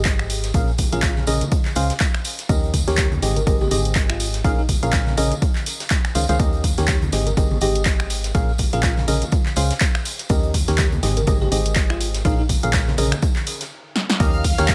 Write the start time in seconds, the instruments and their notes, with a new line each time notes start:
Already playing: fm bass G#1, synth stab G#2 C4 G4 G#4 D#5
0.05 kick, snare, clap, closed hi-hat, tambourine
0.19 finger snap, tambourine
0.30 closed hi-hat, open hi-hat, tambourine
0.43 snare, closed hi-hat, tambourine
0.54 fm bass A#1, synth stab A#2 C#4 G#4 A#4 F5, kick, closed hi-hat, tambourine
0.68 tambourine
0.78 kick, closed hi-hat, open hi-hat, tambourine, high conga
0.92 fm bass A#1, synth stab A#2 C#4 G#4 A#4 F5, fm electric piano F4, closed hi-hat, tambourine
1.02 fm electric piano F4, kick, snare, clap, closed hi-hat, tambourine
1.17 snare, tambourine, high conga
1.27 fm bass A#1, synth stab C#3 C#4 G#4 A#4 D#5, closed hi-hat, open hi-hat, tambourine
1.41 closed hi-hat, tambourine, high conga
1.51 kick, closed hi-hat, tambourine
1.65 snare, clap, tambourine
1.75 fm bass C#2, synth stab C#3 C#4 G#4 C5 F5, closed hi-hat, open hi-hat, tambourine
1.90 snare, closed hi-hat, tambourine
2.00 kick, snare, clap, closed hi-hat, tambourine
2.14 finger snap, snare, tambourine
2.25 closed hi-hat, open hi-hat, tambourine
2.39 snare, closed hi-hat, tambourine
2.49 fm bass D#2, synth stab D#3 C#4 G4 A#4 D#5, kick, closed hi-hat, tambourine
2.64 closed hi-hat, tambourine
2.74 kick, closed hi-hat, open hi-hat, tambourine, high conga
2.88 fm bass D#2, synth stab D#3 C#4 G4 A#4 C#5, fm electric piano G4, snare, closed hi-hat, tambourine
2.98 kick, snare, clap, closed hi-hat, tambourine
3.12 closed hi-hat, tambourine, high conga
3.22 fm bass G#1, synth stab G#2 C4 G4 G#4 D#5, snare, closed hi-hat, open hi-hat, tambourine
3.36 fm electric piano A#4, closed hi-hat, tambourine, high conga
3.47 fm bass G#1, synth stab G#2 C4 G4 G#4 D#5, fm electric piano A#4, kick, closed hi-hat, tambourine
3.60 fm electric piano G4, tambourine, high conga
3.71 fm bass G#1, synth stab G#2 C4 G4 G#4 D#5, closed hi-hat, open hi-hat, tambourine
3.85 closed hi-hat, tambourine
3.95 kick, snare, clap, closed hi-hat
4.10 fm electric piano F4, finger snap, tambourine
4.20 closed hi-hat, open hi-hat, tambourine
4.33 snare, closed hi-hat, tambourine
4.44 fm bass A#1, synth stab A#2 C#4 G#4 A#4 F5, fm electric piano D#4, kick, closed hi-hat, tambourine
4.58 fm electric piano D#4, tambourine
4.69 kick, closed hi-hat, open hi-hat, tambourine, high conga
4.83 fm bass A#1, synth stab A#2 C#4 G#4 A#4 F5, closed hi-hat, tambourine
4.92 kick, snare, clap, closed hi-hat, tambourine
5.06 snare, tambourine, high conga
5.17 fm bass A#1, synth stab C#3 C#4 G#4 A#4 D#5, closed hi-hat, open hi-hat, tambourine
5.31 closed hi-hat, tambourine, high conga
5.42 kick, closed hi-hat, tambourine
5.55 snare, clap, tambourine
5.66 closed hi-hat, open hi-hat, tambourine
5.80 snare, closed hi-hat, tambourine
5.90 kick, snare, clap, closed hi-hat
6.04 finger snap, snare, tambourine
6.15 fm bass C#2, synth stab D#3 C#4 G#4 C5 F5, closed hi-hat, open hi-hat, tambourine
6.29 fm bass C#2, synth stab D#3 C#4 G#4 C5 F5, snare, closed hi-hat, tambourine
6.39 fm bass D#2, synth stab D#3 C#4 G4 A#4 D#5, kick, closed hi-hat, tambourine
6.53 closed hi-hat, tambourine
6.64 kick, closed hi-hat, open hi-hat, tambourine, high conga
6.77 fm bass D#2, synth stab D#3 C#4 G4 A#4 C#5, fm electric piano G4, snare, closed hi-hat, tambourine
6.88 kick, snare, clap, closed hi-hat, tambourine
7.02 closed hi-hat, tambourine, high conga
7.12 fm bass G#1, synth stab G#2 C4 G4 G#4 D#5, snare, closed hi-hat, open hi-hat, tambourine
7.26 fm electric piano A#4, closed hi-hat, tambourine, high conga
7.37 fm bass G#1, synth stab G#2 C4 G4 G#4 D#5, fm electric piano A#4, kick, closed hi-hat, tambourine
7.51 tambourine, high conga
7.61 fm bass G#1, synth stab G#2 C4 G4 G#4 D#5, fm electric piano G4, closed hi-hat, open hi-hat, tambourine
7.75 closed hi-hat, tambourine
7.85 kick, snare, clap, closed hi-hat, tambourine
8.00 finger snap, tambourine
8.10 closed hi-hat, open hi-hat, tambourine
8.24 snare, closed hi-hat, tambourine
8.35 fm bass A#1, synth stab A#2 C#4 G#4 A#4 F5, kick, closed hi-hat, tambourine
8.49 tambourine
8.58 kick, closed hi-hat, open hi-hat, tambourine, high conga
8.73 fm bass A#1, synth stab A#2 C#4 G#4 A#4 F5, fm electric piano F4, closed hi-hat, tambourine
8.83 fm electric piano F4, kick, snare, clap, closed hi-hat, tambourine
8.97 snare, tambourine, high conga
9.08 fm bass A#1, synth stab C#3 C#4 G#4 A#4 D#5, closed hi-hat, open hi-hat, tambourine
9.22 closed hi-hat, tambourine, high conga
9.32 kick, closed hi-hat, tambourine
9.46 snare, clap, tambourine
9.56 fm bass C#2, synth stab C#3 C#4 G#4 C5 F5, closed hi-hat, open hi-hat, tambourine
9.71 snare, closed hi-hat, tambourine
9.81 kick, snare, clap, closed hi-hat, tambourine
9.95 finger snap, snare, tambourine
10.05 closed hi-hat, open hi-hat, tambourine
10.19 snare, closed hi-hat, tambourine
10.29 fm bass D#2, synth stab D#3 C#4 G4 A#4 D#5, kick, closed hi-hat, tambourine
10.43 closed hi-hat, tambourine
10.54 kick, closed hi-hat, open hi-hat, tambourine, high conga
10.68 fm bass D#2, synth stab D#3 C#4 G4 A#4 C#5, fm electric piano G4, snare, closed hi-hat, tambourine
10.78 kick, snare, clap, closed hi-hat, tambourine
10.92 closed hi-hat, tambourine, high conga
11.03 fm bass G#1, synth stab G#2 C4 G4 G#4 D#5, snare, closed hi-hat, open hi-hat, tambourine
11.17 fm electric piano A#4, closed hi-hat, tambourine, high conga
11.27 fm bass G#1, synth stab G#2 C4 G4 G#4 D#5, fm electric piano A#4, kick, closed hi-hat, tambourine
11.41 fm electric piano G4, tambourine, high conga
11.52 fm bass G#1, synth stab G#2 C4 G4 G#4 D#5, closed hi-hat, open hi-hat, tambourine
11.66 closed hi-hat, tambourine
11.76 kick, snare, clap, closed hi-hat
11.90 fm electric piano F4, finger snap, tambourine
12.01 closed hi-hat, open hi-hat, tambourine
12.14 snare, closed hi-hat, tambourine
12.25 fm bass A#1, synth stab A#2 C#4 G#4 A#4 F5, fm electric piano D#4, kick, closed hi-hat, tambourine
12.38 fm electric piano D#4, tambourine
12.49 kick, closed hi-hat, open hi-hat, tambourine, high conga
12.63 fm bass A#1, synth stab A#2 C#4 G#4 A#4 F5, closed hi-hat, tambourine
12.73 kick, snare, clap, closed hi-hat, tambourine
12.87 snare, tambourine, high conga
12.98 fm bass A#1, synth stab C#3 C#4 G#4 A#4 D#5, closed hi-hat, open hi-hat, tambourine
13.12 finger snap, closed hi-hat, tambourine, high conga
13.22 kick, closed hi-hat, tambourine
13.35 snare, clap, tambourine
13.47 closed hi-hat, open hi-hat, tambourine
13.61 snare, closed hi-hat, tambourine
13.96 snare
14.10 snare
14.20 fm bass D#2, synth stab D#3 C#4 G4 A#4 D#5, violin section F5 F6, kick, closed hi-hat, tambourine
14.33 closed hi-hat
14.44 kick, closed hi-hat, open hi-hat, tambourine, high conga
14.58 fm bass D#2, synth stab D#3 C#4 G4 A#4 C#5, fm electric piano G4, snare, closed hi-hat, tambourine
14.68 kick, snare, clap, closed hi-hat